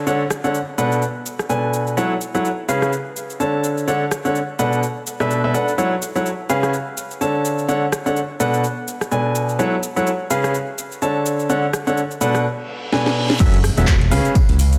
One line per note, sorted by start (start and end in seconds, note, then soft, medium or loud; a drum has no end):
0.00 downlifter medium
0.07 0.22 D3 medium
0.07 0.22 D4 medium
0.07 0.22 A4 medium
0.07 0.22 C#5 medium
0.07 0.22 F#5 medium
0.07 shaker soft
0.30 cross-stick medium
0.30 shaker medium
0.44 0.57 D3 medium
0.44 0.57 D4 medium
0.44 0.57 A4 medium
0.44 0.57 C#5 medium
0.44 0.57 F#5 medium
0.44 shaker soft
0.55 shaker soft
0.78 1.01 B2 medium
0.78 1.01 D4 medium
0.78 1.01 A4 medium
0.78 1.01 B4 medium
0.78 1.01 F#5 medium
0.78 shaker medium
0.92 shaker soft
1.02 shaker soft
1.26 shaker medium
1.39 cross-stick medium
1.39 shaker soft
1.49 1.95 B2 medium
1.49 1.95 D4 medium
1.49 1.95 A4 medium
1.49 1.95 B4 medium
1.49 1.95 G#5 medium
1.49 shaker soft
1.73 shaker medium
1.87 shaker soft
1.97 2.12 F#3 medium
1.97 2.12 E4 medium
1.97 2.12 A4 medium
1.97 2.12 C#5 medium
1.97 2.12 F#5 medium
1.97 shaker soft
2.21 shaker medium
2.35 2.47 F#3 medium
2.35 2.47 E4 medium
2.35 2.47 A4 medium
2.35 2.47 C#5 medium
2.35 2.47 F#5 medium
2.35 shaker soft
2.45 shaker soft
2.69 2.91 C#3 medium
2.69 2.91 C#4 medium
2.69 2.91 G#4 medium
2.69 2.91 B4 medium
2.69 2.91 F5 medium
2.69 shaker medium
2.82 cross-stick medium
2.82 shaker soft
2.93 shaker soft
3.16 shaker medium
3.30 shaker soft
3.40 3.85 D3 medium
3.40 3.85 D4 medium
3.40 3.85 A4 medium
3.40 3.85 C#5 medium
3.40 3.85 A5 medium
3.40 shaker soft
3.64 shaker medium
3.78 shaker soft
3.88 4.03 D3 medium
3.88 4.03 D4 medium
3.88 4.03 A4 medium
3.88 4.03 C#5 medium
3.88 4.03 F#5 medium
3.88 shaker soft
4.11 cross-stick medium
4.11 shaker medium
4.25 4.38 D3 medium
4.25 4.38 D4 medium
4.25 4.38 A4 medium
4.25 4.38 C#5 medium
4.25 4.38 F#5 medium
4.25 shaker soft
4.35 shaker soft
4.59 4.82 B2 medium
4.59 4.82 D4 medium
4.59 4.82 A4 medium
4.59 4.82 B4 medium
4.59 4.82 F#5 medium
4.59 shaker medium
4.73 shaker soft
4.83 shaker soft
5.07 shaker medium
5.20 5.40 B2 medium
5.20 5.40 D4 medium
5.20 5.40 A4 medium
5.20 5.40 B4 medium
5.20 5.40 E5 medium
5.20 cross-stick medium
5.20 shaker soft
5.31 shaker soft
5.44 5.53 B2 medium
5.44 5.53 D4 medium
5.44 5.53 A4 medium
5.44 5.53 B4 medium
5.44 5.53 E5 medium
5.54 5.70 D4 medium
5.54 5.70 A4 medium
5.54 5.70 B4 medium
5.54 5.70 F#5 medium
5.54 shaker medium
5.68 shaker soft
5.78 5.93 F#3 medium
5.78 5.93 E4 medium
5.78 5.93 A4 medium
5.78 5.93 C#5 medium
5.78 5.93 F#5 medium
5.78 shaker soft
6.02 shaker medium
6.16 6.28 F#3 medium
6.16 6.28 E4 medium
6.16 6.28 A4 medium
6.16 6.28 C#5 medium
6.16 6.28 F#5 medium
6.16 shaker soft
6.26 shaker soft
6.49 6.72 C#3 medium
6.49 6.72 C#4 medium
6.49 6.72 G#4 medium
6.49 6.72 B4 medium
6.49 6.72 F5 loud
6.49 shaker medium
6.63 cross-stick medium
6.63 shaker soft
6.74 shaker soft
6.97 shaker medium
7.11 shaker soft
7.21 7.66 D3 medium
7.21 7.66 D4 medium
7.21 7.66 A4 medium
7.21 7.66 C#5 medium
7.21 7.66 A5 medium
7.21 shaker soft
7.45 shaker medium
7.59 shaker soft
7.69 7.84 D3 medium
7.69 7.84 D4 medium
7.69 7.84 A4 medium
7.69 7.84 C#5 medium
7.69 7.84 F#5 medium
7.69 shaker soft
7.92 cross-stick medium
7.92 shaker medium
8.06 8.19 D3 medium
8.06 8.19 D4 medium
8.06 8.18 A4 medium
8.06 8.18 C#5 medium
8.06 8.18 F#5 medium
8.06 shaker soft
8.16 shaker soft
8.40 8.62 B2 medium
8.40 8.62 D4 medium
8.40 8.62 A4 medium
8.40 8.62 B4 medium
8.40 8.62 F#5 loud
8.40 shaker medium
8.54 shaker soft
8.64 shaker soft
8.88 shaker medium
9.01 cross-stick medium
9.01 shaker soft
9.11 9.57 B2 medium
9.11 9.57 D4 medium
9.11 9.57 A4 medium
9.11 9.57 B4 medium
9.11 9.57 G#5 medium
9.11 shaker soft
9.35 shaker medium
9.49 shaker soft
9.59 9.74 F#3 medium
9.59 9.74 E4 medium
9.59 9.74 A4 medium
9.59 9.74 C#5 medium
9.59 9.74 F#5 medium
9.59 shaker soft
9.83 shaker medium
9.96 10.09 F#3 medium
9.96 10.09 E4 medium
9.96 10.09 A4 medium
9.96 10.09 C#5 medium
9.96 10.09 F#5 medium
9.96 shaker soft
10.07 shaker soft
10.30 10.53 C#3 medium
10.30 10.53 C#4 medium
10.30 10.53 G#4 medium
10.30 10.53 B4 medium
10.30 10.53 F5 loud
10.30 shaker medium
10.44 cross-stick medium
10.44 shaker soft
10.54 shaker soft
10.78 shaker medium
10.92 shaker soft
11.02 11.47 D3 medium
11.02 11.47 D4 medium
11.02 11.47 A4 medium
11.02 11.47 C#5 medium
11.02 11.47 A5 medium
11.02 shaker soft
11.26 shaker medium
11.40 shaker soft
11.50 11.65 D3 medium
11.50 11.65 D4 medium
11.50 11.65 A4 medium
11.50 11.65 C#5 medium
11.50 11.65 F#5 medium
11.50 shaker soft
11.73 cross-stick medium
11.73 shaker medium
11.87 12.00 D3 medium
11.87 11.99 D4 medium
11.87 12.00 A4 medium
11.87 11.99 C#5 medium
11.87 11.99 F#5 medium
11.87 shaker soft
11.97 shaker soft
12.11 shaker soft
12.21 12.43 B2 medium
12.21 12.43 D4 medium
12.21 12.43 A4 medium
12.21 12.43 B4 medium
12.21 12.43 F#5 loud
12.21 shaker medium
12.35 cross-stick medium
12.35 shaker soft
12.45 reverse cymbal medium
12.92 13.38 B2 medium
12.92 13.38 D4 medium
12.92 13.38 A4 medium
12.92 13.38 B4 medium
12.92 13.38 G#5 medium
12.92 snare medium
13.06 snare medium
13.30 snare medium
13.40 13.71 F#1 loud
13.40 13.55 F#3 medium
13.40 13.55 C#4 medium
13.40 13.55 F#4 medium
13.40 13.55 A4 medium
13.40 13.55 E5 loud
13.40 kick loud
13.40 closed hi-hat medium
13.40 ride medium
13.40 tambourine medium
13.40 crash loud
13.40 impact medium
13.40 shaker soft
13.54 closed hi-hat soft
13.64 cross-stick medium
13.64 open hi-hat loud
13.64 tambourine medium
13.64 shaker medium
13.77 14.13 E1 medium
13.77 13.90 F#3 medium
13.77 13.90 C#4 medium
13.77 13.90 F#4 medium
13.77 13.90 A4 medium
13.77 13.90 E5 medium
13.77 closed hi-hat soft
13.77 shaker soft
13.87 kick loud
13.87 snare loud
13.87 clap loud
13.87 closed hi-hat medium
13.87 ride medium
13.87 tambourine medium
13.87 shaker soft
14.01 snare soft
14.01 closed hi-hat soft
14.11 14.21 C#2 medium
14.11 14.34 C#3 medium
14.11 14.34 C#4 medium
14.11 14.34 G#4 medium
14.11 14.34 B4 medium
14.11 14.34 F5 loud
14.11 open hi-hat loud
14.11 tambourine medium
14.11 shaker medium
14.25 closed hi-hat soft
14.25 shaker soft
14.35 kick loud
14.35 closed hi-hat medium
14.35 ride medium
14.35 tambourine medium
14.35 shaker soft
14.49 14.78 C#2 medium
14.49 closed hi-hat soft
14.59 open hi-hat loud
14.59 tambourine medium
14.59 shaker medium
14.73 closed hi-hat soft
14.73 shaker soft